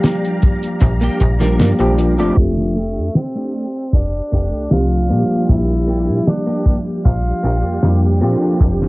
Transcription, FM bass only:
0.82 A#1
1.21 A#1
1.60 G2
1.80 A#1
2.19 G1
2.38 F1
2.97 F2
3.93 F1
4.33 F1
4.53 C2
4.72 C2
5.10 A#2
5.49 A#1
6.09 A#2
7.06 A#1
7.44 A#1
7.64 F2
7.83 F2
8.22 A#2
8.61 F1

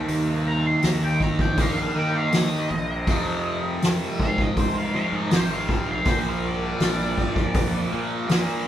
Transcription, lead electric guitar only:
0.47 A#5
0.67 C6
0.85 A#5
1.04 G5
1.23 A#5
1.41 G5
1.60 F5
1.78 F5
1.98 G5
2.17 F5
2.36 D#5
4.23 F5
4.41 D#5
4.59 C5
4.77 F5
4.97 F5
5.15 D#5
5.35 C5
5.54 F5
5.73 F5
5.91 F5
6.09 C5
6.29 F5
6.47 D5

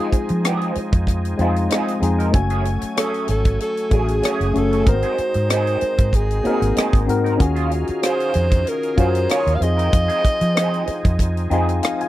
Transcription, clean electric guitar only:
Already playing: G#4
0.00 F3 C4 D#4
0.12 muted clean electric guitar stroke
0.29 muted clean electric guitar stroke
0.44 E3 B3 D4 G4
0.56 F3 C4 D#4 G#4
0.75 muted clean electric guitar stroke
0.92 muted clean electric guitar stroke
1.07 muted clean electric guitar stroke
1.38 F3 C4 D#4 G#4
1.55 muted clean electric guitar stroke
1.70 F3 C4 D#4 G#4
2.01 muted clean electric guitar stroke
2.19 F3 C4 D#4 A#4
2.33 muted clean electric guitar stroke
2.51 F#3 A3 C#4 G#4
2.65 muted clean electric guitar stroke
2.82 muted clean electric guitar stroke
2.97 F#3 A3 C#4 G#4
3.28 muted clean electric guitar stroke
3.45 muted clean electric guitar stroke
3.60 muted clean electric guitar stroke
3.91 F#3 A3 C#4 G#4
4.08 muted clean electric guitar stroke
4.22 F#3 A3 C#4 G#4
4.54 muted clean electric guitar stroke
4.71 F#3 A3 C#4 A4
4.86 muted clean electric guitar stroke
5.03 F#3 C4 D#4 G#4
5.18 muted clean electric guitar stroke
5.35 muted clean electric guitar stroke
5.49 F#3 C4 D#4 G#4
5.81 muted clean electric guitar stroke
5.98 muted clean electric guitar stroke
6.12 muted clean electric guitar stroke
6.44 F#3 C4 D#4 G#4
6.61 muted clean electric guitar stroke
6.76 F#3 C4 D#4 G#4
7.07 muted clean electric guitar stroke
7.24 F#3 C4 D#4 A#4
7.39 muted clean electric guitar stroke
7.56 F#3 C#4 F4 G#4
7.71 muted clean electric guitar stroke
7.88 muted clean electric guitar stroke
8.02 F#3 C#4 F4 G#4
8.34 muted clean electric guitar stroke
8.51 muted clean electric guitar stroke
8.65 muted clean electric guitar stroke
8.97 F#3 C#4 F4 G#4
9.15 muted clean electric guitar stroke
9.29 F#3 C#4 F4 G#4
9.60 muted clean electric guitar stroke
9.77 F3 C4 D#4 A#4
9.92 muted clean electric guitar stroke
10.08 F3 C4 D#4 G#4
10.23 muted clean electric guitar stroke
10.40 muted clean electric guitar stroke
10.55 F3 C4 D#4 G#4
10.87 muted clean electric guitar stroke
11.04 muted clean electric guitar stroke
11.20 muted clean electric guitar stroke
11.51 F3 C4 D#4 G#4
11.68 muted clean electric guitar stroke
11.82 muted clean electric guitar stroke
12.00 muted clean electric guitar stroke

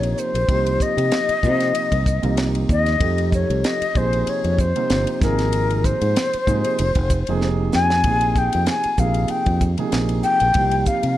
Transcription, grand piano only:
Already playing: C3 F3 A#3 D#4 A#4
0.48 C3 F3 A#3 D#4 G4
1.43 C3 F3 A#3 D#4 F4
2.22 C3 F3 A#3 D#4 F4
3.00 C3 F3 A3 D#4 G4
3.95 C3 F3 A#3 D#4 G#4
4.76 C3 F3 A#3 D#4 F4
5.22 C3 F3 A#3 D#4 G#4
6.47 C3 F3 A#3 D#4 G#4
7.29 C3 F3 A#3 D#4 G#4
8.05 C3 F3 A#3 D#4 G#4
8.99 C3 F3 A#3 D#4 G#4
9.78 C3 F3 A#3 D#4 G#4
10.55 C3 F3 A#3 D#4 G4

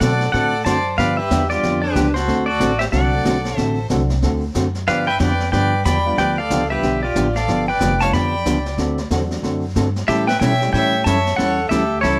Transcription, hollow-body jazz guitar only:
0.01 D3 A3 C4 F#4 A4
0.33 D3 A3 C4 F#4 A4
0.66 D3 A3 C4 F#4 A4
0.98 D3 F3 B3 D4 G4
1.31 D3 F3 B3 D4 G4
1.63 D3 F3 B3 D4 G4
1.95 D3 F3 B3 D4 G4
2.27 D3 A3 C4 F#4 A4
2.60 D3 A3 C4 F#4 A4
2.92 D3 A3 C4 F#4 A4
3.25 D3 A3 C4 F#4 A4
3.57 D3 A3 C4 F#4 A4
3.90 D3 A3 C4 F#4 A4
4.22 D3 A3 C4 F#4 A4
4.55 D3 A3 C4 F#4 A4
4.88 D3 F3 B3 D4 G4
5.20 D3 F3 B3 D4 G4
5.53 D3 F3 B3 D4 G4
5.85 D3 F3 B3 D4 G4
6.17 D3 F3 B3 D4 G4
6.50 D3 F3 B3 D4 G4
6.83 D3 F3 B3 D4 G4
7.15 D3 F3 B3 D4 G4
7.48 D3 F3 B3 D4 G4
7.81 D3 F3 B3 D4 G4
8.13 D3 F3 B3 D4 G4
8.46 D3 F3 B3 D4 G4
8.78 D3 A3 C4 F#4 A4
9.11 D3 A3 C4 F#4 A4
9.43 D3 A3 C4 F#4 A4
9.76 D3 A3 C4 F#4 A4
10.08 E3 G3 C#4 E4 A4
10.41 E3 G3 C#4 E4 A4
10.73 E3 G3 C#4 E4 A4
11.06 E3 G3 C#4 E4 A4
11.38 E3 G3 C#4 E4 A4
11.71 E3 G3 C#4 E4 A4
12.03 E3 G3 C#4 E4 A4

